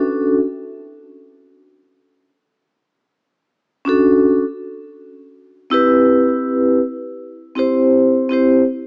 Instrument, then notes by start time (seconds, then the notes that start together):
vibraphone
Already playing: C#4 D4 F#4 A4
3.85 C#4 D4 F#4
3.89 A4
5.70 C4 E4 G4 B4
7.55 C4 E4 G4 C5
8.29 C4 E4 G4 C5